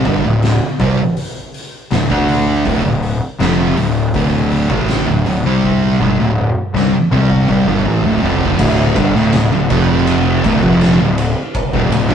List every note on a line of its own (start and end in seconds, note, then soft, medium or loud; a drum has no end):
0.05 0.23 G1 medium
0.05 0.23 G2 medium
0.05 0.23 D3 loud
0.05 kick loud
0.05 open hi-hat medium
0.24 0.58 D1 medium
0.24 0.54 D2 medium
0.24 0.54 A2 medium
0.43 snare loud
0.43 open hi-hat medium
0.79 0.97 C2 medium
0.79 0.97 C3 medium
0.79 0.97 G3 medium
0.79 kick loud
0.79 open hi-hat medium
1.17 open hi-hat medium
1.54 open hi-hat medium
1.91 2.09 D1 medium
1.91 2.10 D2 medium
1.91 2.09 A2 medium
1.91 snare loud
1.91 open hi-hat medium
2.09 2.62 D2 medium
2.09 2.64 D3 medium
2.09 2.65 A3 medium
2.09 2.65 D4 medium
2.09 kick loud
2.28 open hi-hat medium
2.65 2.83 D1 medium
2.65 2.83 D2 medium
2.65 2.83 A2 loud
2.65 kick loud
2.65 open hi-hat medium
2.84 3.19 D1 medium
2.84 3.14 D2 medium
2.84 3.14 A2 medium
3.03 open hi-hat medium
3.39 3.74 F1 loud
3.39 3.76 F2 loud
3.39 3.76 C3 loud
3.39 3.76 F3 loud
3.39 snare loud
3.39 open hi-hat medium
3.77 4.12 D1 medium
3.77 4.07 D2 medium
3.77 4.07 A2 medium
3.77 open hi-hat medium
4.14 4.66 D1 medium
4.14 4.69 D2 loud
4.14 4.68 A2 loud
4.14 4.70 D3 loud
4.14 kick loud
4.14 open hi-hat medium
4.51 open hi-hat soft
4.69 5.04 A1 medium
4.69 5.06 A2 medium
4.69 5.06 E3 loud
4.69 5.07 A3 medium
4.69 kick loud
4.88 snare loud
4.88 open hi-hat medium
5.07 5.25 D1 medium
5.07 5.25 D2 medium
5.07 5.25 A2 medium
5.26 5.43 D1 medium
5.26 5.44 D2 medium
5.26 5.45 A2 medium
5.26 open hi-hat medium
5.44 5.96 C2 medium
5.44 5.99 C3 medium
5.44 6.00 G3 medium
5.44 6.00 C4 loud
5.63 kick medium
6.00 6.17 G1 medium
6.00 6.18 G2 medium
6.00 6.18 D3 medium
6.00 high tom medium
6.18 6.53 D1 medium
6.18 6.49 D2 medium
6.18 6.49 A2 medium
6.38 mid tom medium
6.74 6.91 C2 medium
6.74 6.92 C3 medium
6.74 6.92 G3 medium
6.74 snare medium
7.11 7.46 C2 loud
7.11 7.47 C3 medium
7.11 7.48 G3 loud
7.11 7.48 C4 loud
7.11 mid tom medium
7.30 kick medium
7.48 7.66 C2 loud
7.48 7.66 C3 medium
7.48 7.66 G3 medium
7.48 kick medium
7.66 7.84 G1 loud
7.66 7.84 G2 medium
7.66 7.85 D3 medium
7.66 mid tom medium
7.85 8.03 A1 loud
7.85 8.03 A2 medium
7.85 8.04 E3 medium
7.85 floor tom medium
8.03 8.21 D1 medium
8.03 8.22 D2 medium
8.03 8.22 A2 medium
8.03 floor tom medium
8.22 8.57 F1 medium
8.22 8.58 F2 medium
8.22 8.59 C3 medium
8.22 8.59 F3 medium
8.22 floor tom loud
8.41 floor tom medium
8.59 8.94 D1 medium
8.59 8.95 D2 loud
8.59 8.96 A2 loud
8.59 8.96 D3 loud
8.59 kick loud
8.59 crash loud
8.96 9.14 G1 medium
8.96 9.14 G2 loud
8.96 9.15 D3 loud
8.96 kick loud
8.96 ride medium
9.15 9.32 D1 medium
9.15 9.32 D2 medium
9.15 9.33 A2 loud
9.15 snare soft
9.33 9.51 D1 medium
9.33 9.50 D2 medium
9.33 9.51 A2 medium
9.33 snare loud
9.33 ride loud
9.52 9.69 D1 medium
9.52 9.69 D2 medium
9.52 9.70 A2 medium
9.69 10.40 F1 loud
9.69 10.43 F2 medium
9.69 10.43 C3 loud
9.69 10.44 F3 loud
9.69 kick loud
9.69 ride medium
10.07 ride medium
10.44 10.62 D1 loud
10.44 10.62 D2 loud
10.44 10.62 A2 loud
10.44 kick loud
10.44 ride medium
10.62 10.97 F1 loud
10.62 10.99 F2 medium
10.62 10.99 C3 loud
10.62 10.99 F3 loud
10.62 kick loud
10.81 snare loud
10.81 ride medium
10.99 11.34 D1 medium
10.99 11.30 D2 medium
10.99 11.30 A2 medium
11.18 ride medium
11.55 kick loud
11.55 ride medium
11.73 11.91 D1 loud
11.73 11.91 D2 medium
11.73 11.92 A2 loud
11.73 kick loud
11.91 12.09 D1 medium
11.91 12.10 D2 medium
11.91 12.11 A2 medium
11.91 ride medium
12.09 12.14 G1 loud
12.09 12.14 G2 medium
12.09 12.14 D3 loud
12.09 12.14 G3 loud
12.09 kick loud